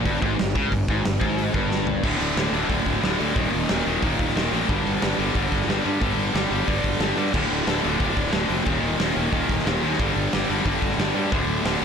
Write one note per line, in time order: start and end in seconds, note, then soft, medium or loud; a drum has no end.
0.05 0.21 G1 loud
0.05 0.21 G2 loud
0.05 kick loud
0.05 open hi-hat medium
0.21 0.37 G#1 loud
0.21 0.38 G#2 loud
0.21 kick loud
0.39 0.55 G1 medium
0.39 0.52 G2 medium
0.39 snare loud
0.39 open hi-hat medium
0.55 0.70 C#2 loud
0.55 0.71 C#3 loud
0.55 kick loud
0.72 0.87 G1 medium
0.72 0.85 G2 medium
0.72 kick medium
0.72 open hi-hat medium
0.88 1.04 G#1 medium
0.88 1.04 G#2 loud
0.88 kick loud
1.04 1.20 G1 medium
1.04 1.18 G2 medium
1.04 snare loud
1.04 open hi-hat medium
1.20 1.52 G#1 loud
1.20 1.53 G#2 loud
1.20 kick loud
1.38 open hi-hat medium
1.54 2.00 G1 loud
1.54 2.03 G2 loud
1.54 kick loud
1.72 snare medium
1.87 floor tom medium
2.03 2.14 D1 loud
2.03 2.36 D2 medium
2.03 2.36 A2 loud
2.03 2.37 D3 loud
2.03 kick loud
2.03 crash loud
2.20 2.31 D1 medium
2.20 open hi-hat medium
2.36 2.47 D1 loud
2.36 2.52 D2 medium
2.36 2.52 A2 loud
2.36 2.51 D3 medium
2.36 snare loud
2.36 open hi-hat medium
2.53 2.64 D1 loud
2.53 2.68 D2 medium
2.53 2.68 A2 medium
2.53 2.69 D3 loud
2.53 open hi-hat medium
2.69 2.80 D1 loud
2.69 3.00 D2 loud
2.69 3.01 A2 loud
2.69 3.01 D3 loud
2.69 kick medium
2.69 open hi-hat medium
2.86 2.97 D1 medium
2.86 kick medium
2.86 open hi-hat medium
3.02 3.14 D1 loud
3.02 3.19 D2 medium
3.02 3.19 A2 medium
3.02 3.18 D3 loud
3.02 snare loud
3.02 open hi-hat medium
3.20 3.35 D2 medium
3.20 3.31 D2 loud
3.20 3.36 A2 loud
3.20 3.35 D3 loud
3.20 open hi-hat medium
3.36 3.47 D#1 loud
3.36 3.68 D#2 loud
3.36 3.68 A#2 loud
3.36 3.69 D#3 loud
3.36 kick loud
3.36 open hi-hat medium
3.53 3.64 D#1 medium
3.53 open hi-hat medium
3.69 3.81 D#1 medium
3.69 3.86 D#2 medium
3.69 3.86 A#2 loud
3.69 3.85 D#3 loud
3.69 snare loud
3.69 open hi-hat medium
3.86 3.98 D#1 loud
3.86 4.02 D#2 medium
3.86 4.03 A#2 medium
3.86 4.03 D#3 loud
3.86 open hi-hat medium
4.03 4.14 D#1 loud
4.03 4.34 D#2 loud
4.03 4.35 A#2 loud
4.03 4.35 D#3 loud
4.03 kick loud
4.03 open hi-hat medium
4.19 4.30 D#1 medium
4.19 kick medium
4.19 open hi-hat medium
4.30 snare soft
4.35 4.47 D#1 loud
4.35 4.52 D#2 medium
4.35 4.51 A#2 medium
4.35 4.51 D#3 medium
4.35 snare loud
4.35 open hi-hat medium
4.52 4.63 A1 loud
4.52 4.68 D#2 medium
4.52 4.68 A#2 loud
4.52 4.68 D#3 loud
4.52 open hi-hat medium
4.62 snare soft
4.68 4.80 G1 loud
4.68 5.02 G2 loud
4.68 5.01 D3 loud
4.68 5.03 G3 loud
4.68 kick loud
4.68 open hi-hat medium
4.86 4.96 G1 loud
4.86 open hi-hat medium
5.02 5.14 G1 loud
5.02 5.19 G2 medium
5.02 5.17 D3 medium
5.02 5.18 G3 medium
5.02 snare loud
5.02 open hi-hat medium
5.18 5.29 G1 medium
5.18 5.34 G2 medium
5.18 5.34 D3 medium
5.18 5.35 G3 loud
5.18 open hi-hat medium
5.35 5.46 G1 loud
5.35 5.67 G2 loud
5.35 5.67 D3 loud
5.35 5.67 G3 loud
5.35 kick loud
5.35 open hi-hat medium
5.52 5.63 G1 medium
5.52 kick medium
5.52 open hi-hat medium
5.62 snare soft
5.67 5.78 G1 loud
5.67 5.83 G2 medium
5.67 5.83 D3 medium
5.67 5.83 G3 medium
5.67 snare loud
5.67 open hi-hat medium
5.84 6.00 G2 medium
5.84 5.96 G2 loud
5.84 6.01 D3 medium
5.84 6.01 G3 loud
5.84 open hi-hat medium
6.01 6.12 G1 loud
6.01 6.32 G2 medium
6.01 6.32 D3 loud
6.01 6.33 G3 loud
6.01 kick loud
6.01 open hi-hat medium
6.17 6.28 G1 medium
6.17 open hi-hat medium
6.33 6.45 G1 loud
6.33 6.50 G2 medium
6.33 6.50 D3 medium
6.33 6.50 G3 medium
6.33 snare loud
6.33 open hi-hat medium
6.51 6.62 G1 loud
6.51 6.66 G2 medium
6.51 6.67 D3 medium
6.51 6.67 G3 loud
6.51 open hi-hat medium
6.67 6.78 G1 loud
6.67 6.99 G2 medium
6.67 6.99 D3 loud
6.67 7.00 G3 loud
6.67 kick loud
6.67 open hi-hat loud
6.84 6.95 G1 medium
6.84 kick medium
6.84 open hi-hat medium
6.92 snare soft
7.00 7.11 G1 loud
7.00 7.17 G2 medium
7.00 7.16 D3 medium
7.00 7.16 G3 loud
7.00 snare loud
7.00 open hi-hat medium
7.16 7.27 G2 medium
7.16 7.33 G2 medium
7.16 7.33 D3 medium
7.16 7.33 G3 loud
7.16 open hi-hat medium
7.27 snare soft
7.33 7.45 D1 loud
7.33 7.66 D2 loud
7.33 7.66 A2 loud
7.33 7.67 D3 loud
7.33 kick loud
7.33 crash loud
7.50 7.61 D1 medium
7.50 open hi-hat medium
7.67 7.78 D1 medium
7.67 7.84 D2 medium
7.67 7.83 A2 medium
7.67 7.83 D3 loud
7.67 snare loud
7.67 open hi-hat medium
7.84 7.96 D1 loud
7.84 7.99 D2 medium
7.84 7.99 A2 medium
7.84 8.00 D3 loud
7.84 open hi-hat medium
8.00 8.11 D1 medium
8.00 8.31 D2 medium
8.00 8.31 A2 medium
8.00 8.32 D3 loud
8.00 kick medium
8.00 open hi-hat medium
8.17 8.28 D1 medium
8.17 kick medium
8.17 open hi-hat medium
8.26 snare soft
8.32 8.44 D1 loud
8.32 8.49 D2 medium
8.32 8.48 A2 medium
8.32 8.48 D3 loud
8.32 snare loud
8.32 open hi-hat medium
8.49 8.61 F1 medium
8.49 8.65 D2 medium
8.49 8.65 A2 medium
8.49 8.65 D3 loud
8.49 open hi-hat medium
8.66 8.77 D#1 loud
8.66 8.98 D#2 loud
8.66 8.99 A#2 loud
8.66 8.99 D#3 loud
8.66 kick loud
8.66 open hi-hat medium
8.83 8.94 D#1 medium
8.83 open hi-hat medium
8.99 9.11 D#1 medium
8.99 9.16 D#2 medium
8.99 9.16 A#2 medium
8.99 9.15 D#3 loud
8.99 snare loud
8.99 open hi-hat medium
9.16 9.27 D#1 loud
9.16 9.32 D#2 medium
9.16 9.32 A#2 medium
9.16 9.32 D#3 medium
9.16 open hi-hat medium
9.32 9.43 D#1 loud
9.32 9.65 D#2 loud
9.32 9.65 A#2 loud
9.32 9.66 D#3 loud
9.32 kick loud
9.32 open hi-hat medium
9.49 9.60 D#1 medium
9.49 kick medium
9.49 open hi-hat medium
9.59 snare soft
9.67 9.77 D#1 loud
9.67 9.84 D#2 medium
9.67 9.83 A#2 medium
9.67 9.83 D#3 loud
9.67 snare loud
9.67 open hi-hat medium
9.83 9.94 D#2 loud
9.83 9.99 D#2 medium
9.83 9.99 A#2 loud
9.83 9.99 D#3 loud
9.83 open hi-hat medium
9.93 snare soft
9.99 10.10 G1 loud
9.99 10.32 G2 loud
9.99 10.33 D3 loud
9.99 10.33 G3 loud
9.99 kick loud
9.99 open hi-hat medium
10.16 10.27 G1 medium
10.16 open hi-hat medium
10.33 10.44 G1 medium
10.33 10.51 G2 medium
10.33 10.50 D3 medium
10.33 10.49 G3 medium
10.33 snare loud
10.33 open hi-hat medium
10.50 10.60 G1 loud
10.50 10.65 G2 medium
10.50 10.65 D3 medium
10.50 10.66 G3 loud
10.50 open hi-hat medium
10.65 10.76 G1 loud
10.65 10.98 G2 loud
10.65 10.98 D3 loud
10.65 10.98 G3 loud
10.65 kick medium
10.65 open hi-hat medium
10.82 10.93 G1 medium
10.82 kick medium
10.82 open hi-hat medium
10.92 snare soft
10.98 11.09 G1 loud
10.98 11.15 G2 loud
10.98 11.15 D3 medium
10.98 11.14 G3 medium
10.98 snare loud
10.98 open hi-hat medium
11.14 11.25 G2 medium
11.14 11.31 G2 medium
11.14 11.31 D3 medium
11.14 11.31 G3 loud
11.14 open hi-hat medium
11.31 11.43 D1 loud
11.31 11.64 D2 loud
11.31 11.64 A2 loud
11.31 11.65 D3 loud
11.31 kick loud
11.31 open hi-hat medium
11.47 11.58 D1 medium
11.47 open hi-hat medium
11.65 11.76 D1 loud
11.65 11.82 D2 loud
11.65 11.81 A2 medium
11.65 11.81 D3 loud
11.65 snare loud
11.65 open hi-hat loud
11.81 open hi-hat medium